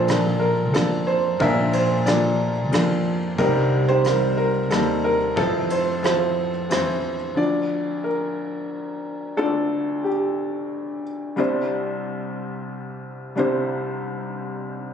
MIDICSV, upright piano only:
0, 0, Header, 1, 2, 480
1, 0, Start_track
1, 0, Tempo, 662252
1, 1021, Time_signature, 3, 2, 24, 8
1, 4381, Tempo, 667408
1, 10777, End_track
2, 0, Start_track
2, 0, Title_t, "Upright piano"
2, 0, Program_c, 0, 0
2, 0, Control_c, 0, 64, 127
2, 0, Note_on_c, 0, 34, 54
2, 0, Note_on_c, 0, 46, 55
2, 0, Note_on_c, 0, 53, 69
2, 0, Note_on_c, 0, 58, 63
2, 0, Note_on_c, 0, 62, 63
2, 0, Note_on_c, 0, 65, 48
2, 0, Note_on_c, 0, 69, 50
2, 0, Note_on_c, 0, 72, 76
2, 59, Note_off_c, 0, 53, 0
2, 59, Note_on_c, 0, 53, 54
2, 61, Note_off_c, 0, 58, 0
2, 61, Note_on_c, 0, 58, 51
2, 65, Note_off_c, 0, 62, 0
2, 65, Note_on_c, 0, 62, 53
2, 72, Note_off_c, 0, 69, 0
2, 72, Note_on_c, 0, 69, 61
2, 287, Note_on_c, 0, 70, 71
2, 312, Note_off_c, 0, 72, 0
2, 384, Note_off_c, 0, 53, 0
2, 386, Note_off_c, 0, 58, 0
2, 388, Note_off_c, 0, 62, 0
2, 391, Note_off_c, 0, 69, 0
2, 533, Note_on_c, 0, 69, 65
2, 535, Note_on_c, 0, 53, 57
2, 539, Note_on_c, 0, 58, 49
2, 541, Note_on_c, 0, 62, 54
2, 542, Note_off_c, 0, 70, 0
2, 641, Note_off_c, 0, 65, 0
2, 774, Note_on_c, 0, 72, 84
2, 784, Note_off_c, 0, 69, 0
2, 862, Note_off_c, 0, 53, 0
2, 864, Note_off_c, 0, 58, 0
2, 865, Note_off_c, 0, 62, 0
2, 996, Note_off_c, 0, 46, 0
2, 997, Note_off_c, 0, 34, 0
2, 1012, Note_on_c, 0, 53, 71
2, 1014, Note_on_c, 0, 70, 84
2, 1017, Note_on_c, 0, 58, 61
2, 1019, Note_on_c, 0, 34, 58
2, 1020, Note_on_c, 0, 46, 57
2, 1021, Note_on_c, 0, 62, 64
2, 1025, Note_off_c, 0, 72, 0
2, 1025, Note_on_c, 0, 65, 59
2, 1026, Note_on_c, 0, 76, 79
2, 1258, Note_on_c, 0, 72, 82
2, 1264, Note_off_c, 0, 70, 0
2, 1340, Note_off_c, 0, 53, 0
2, 1342, Note_off_c, 0, 58, 0
2, 1344, Note_off_c, 0, 62, 0
2, 1346, Note_off_c, 0, 76, 0
2, 1492, Note_on_c, 0, 74, 69
2, 1493, Note_on_c, 0, 53, 55
2, 1494, Note_off_c, 0, 65, 0
2, 1500, Note_on_c, 0, 58, 50
2, 1501, Note_on_c, 0, 62, 57
2, 1504, Note_on_c, 0, 69, 53
2, 1505, Note_off_c, 0, 72, 0
2, 1505, Note_on_c, 0, 65, 54
2, 1819, Note_off_c, 0, 53, 0
2, 1823, Note_off_c, 0, 58, 0
2, 1824, Note_off_c, 0, 62, 0
2, 1970, Note_off_c, 0, 69, 0
2, 1970, Note_on_c, 0, 53, 58
2, 1974, Note_on_c, 0, 58, 53
2, 1975, Note_on_c, 0, 62, 55
2, 1981, Note_on_c, 0, 69, 63
2, 2186, Note_off_c, 0, 74, 0
2, 2192, Note_off_c, 0, 65, 0
2, 2298, Note_off_c, 0, 53, 0
2, 2300, Note_off_c, 0, 58, 0
2, 2300, Note_off_c, 0, 62, 0
2, 2303, Note_off_c, 0, 69, 0
2, 2428, Note_off_c, 0, 34, 0
2, 2428, Note_off_c, 0, 46, 0
2, 2451, Note_on_c, 0, 55, 75
2, 2454, Note_on_c, 0, 70, 91
2, 2460, Note_on_c, 0, 48, 59
2, 2460, Note_on_c, 0, 60, 69
2, 2461, Note_on_c, 0, 36, 61
2, 2461, Note_on_c, 0, 63, 70
2, 2466, Note_on_c, 0, 67, 64
2, 2467, Control_c, 0, 64, 0
2, 2579, Control_c, 0, 64, 127
2, 2778, Note_off_c, 0, 55, 0
2, 2782, Note_off_c, 0, 60, 0
2, 2783, Note_off_c, 0, 63, 0
2, 2816, Note_off_c, 0, 67, 0
2, 2816, Note_on_c, 0, 72, 99
2, 2826, Note_off_c, 0, 70, 0
2, 2827, Note_on_c, 0, 67, 62
2, 2830, Note_on_c, 0, 63, 66
2, 2932, Note_off_c, 0, 63, 0
2, 2932, Note_on_c, 0, 55, 63
2, 2936, Note_on_c, 0, 60, 53
2, 2943, Note_on_c, 0, 63, 52
2, 2948, Note_on_c, 0, 70, 68
2, 3152, Note_off_c, 0, 72, 0
2, 3160, Note_off_c, 0, 70, 0
2, 3171, Note_on_c, 0, 70, 83
2, 3259, Note_off_c, 0, 55, 0
2, 3261, Note_off_c, 0, 60, 0
2, 3264, Note_off_c, 0, 63, 0
2, 3410, Note_on_c, 0, 69, 76
2, 3414, Note_on_c, 0, 55, 60
2, 3417, Note_on_c, 0, 60, 54
2, 3421, Note_off_c, 0, 70, 0
2, 3421, Note_on_c, 0, 63, 54
2, 3427, Note_on_c, 0, 58, 63
2, 3513, Note_off_c, 0, 67, 0
2, 3656, Note_on_c, 0, 70, 81
2, 3661, Note_off_c, 0, 69, 0
2, 3740, Note_off_c, 0, 55, 0
2, 3741, Note_off_c, 0, 60, 0
2, 3743, Note_off_c, 0, 63, 0
2, 3746, Note_off_c, 0, 58, 0
2, 3870, Note_off_c, 0, 36, 0
2, 3870, Note_off_c, 0, 48, 0
2, 3887, Note_on_c, 0, 53, 73
2, 3893, Note_on_c, 0, 29, 58
2, 3893, Note_on_c, 0, 60, 64
2, 3895, Note_on_c, 0, 69, 82
2, 3896, Note_on_c, 0, 64, 62
2, 3904, Note_off_c, 0, 70, 0
2, 3907, Control_c, 0, 64, 0
2, 4037, Control_c, 0, 64, 127
2, 4140, Note_on_c, 0, 72, 81
2, 4144, Note_off_c, 0, 69, 0
2, 4217, Note_off_c, 0, 53, 0
2, 4220, Note_off_c, 0, 60, 0
2, 4222, Note_off_c, 0, 64, 0
2, 4369, Note_on_c, 0, 53, 58
2, 4373, Note_off_c, 0, 72, 0
2, 4376, Note_on_c, 0, 60, 49
2, 4377, Note_on_c, 0, 64, 54
2, 4382, Note_on_c, 0, 69, 62
2, 4384, Note_on_c, 0, 72, 73
2, 4699, Note_off_c, 0, 53, 0
2, 4703, Note_off_c, 0, 60, 0
2, 4703, Note_off_c, 0, 64, 0
2, 4706, Note_off_c, 0, 69, 0
2, 4847, Note_on_c, 0, 52, 54
2, 4849, Note_off_c, 0, 72, 0
2, 4850, Note_on_c, 0, 60, 50
2, 4854, Note_on_c, 0, 64, 49
2, 4860, Note_on_c, 0, 72, 60
2, 5179, Note_off_c, 0, 52, 0
2, 5181, Note_off_c, 0, 60, 0
2, 5183, Note_off_c, 0, 64, 0
2, 5186, Note_off_c, 0, 72, 0
2, 5312, Note_off_c, 0, 29, 0
2, 5320, Note_on_c, 0, 53, 41
2, 5329, Note_on_c, 0, 62, 39
2, 5332, Note_on_c, 0, 38, 45
2, 5333, Note_on_c, 0, 50, 41
2, 5337, Note_on_c, 0, 65, 39
2, 5337, Note_on_c, 0, 74, 71
2, 5352, Control_c, 0, 64, 0
2, 5495, Control_c, 0, 64, 127
2, 5816, Note_on_c, 0, 70, 52
2, 5835, Note_off_c, 0, 74, 0
2, 6745, Note_off_c, 0, 53, 0
2, 6750, Note_off_c, 0, 62, 0
2, 6751, Note_off_c, 0, 38, 0
2, 6752, Note_off_c, 0, 50, 0
2, 6754, Note_off_c, 0, 65, 0
2, 6772, Note_on_c, 0, 57, 44
2, 6775, Note_on_c, 0, 69, 64
2, 6780, Note_on_c, 0, 62, 43
2, 6782, Note_on_c, 0, 38, 44
2, 6782, Note_on_c, 0, 50, 45
2, 6786, Note_on_c, 0, 65, 43
2, 6797, Note_on_c, 0, 74, 52
2, 6811, Note_off_c, 0, 70, 0
2, 7255, Note_on_c, 0, 67, 45
2, 7274, Note_off_c, 0, 69, 0
2, 7951, Note_off_c, 0, 67, 0
2, 8188, Note_off_c, 0, 57, 0
2, 8192, Note_off_c, 0, 62, 0
2, 8193, Note_off_c, 0, 38, 0
2, 8193, Note_off_c, 0, 50, 0
2, 8195, Note_off_c, 0, 65, 0
2, 8201, Note_off_c, 0, 74, 0
2, 8205, Note_on_c, 0, 55, 56
2, 8216, Note_on_c, 0, 62, 50
2, 8218, Note_on_c, 0, 36, 57
2, 8218, Note_on_c, 0, 48, 51
2, 8222, Note_on_c, 0, 64, 51
2, 8231, Note_on_c, 0, 72, 66
2, 8233, Control_c, 0, 64, 0
2, 8367, Control_c, 0, 64, 127
2, 9620, Note_off_c, 0, 55, 0
2, 9625, Note_off_c, 0, 62, 0
2, 9626, Note_off_c, 0, 36, 0
2, 9626, Note_off_c, 0, 48, 0
2, 9628, Note_off_c, 0, 64, 0
2, 9633, Note_off_c, 0, 72, 0
2, 9639, Note_on_c, 0, 55, 52
2, 9648, Note_on_c, 0, 62, 48
2, 9655, Note_on_c, 0, 48, 54
2, 9656, Note_on_c, 0, 36, 50
2, 9658, Note_on_c, 0, 64, 46
2, 9665, Note_on_c, 0, 72, 59
2, 10777, Note_off_c, 0, 36, 0
2, 10777, Note_off_c, 0, 48, 0
2, 10777, Note_off_c, 0, 55, 0
2, 10777, Note_off_c, 0, 62, 0
2, 10777, Note_off_c, 0, 64, 0
2, 10777, Note_off_c, 0, 72, 0
2, 10777, End_track
0, 0, End_of_file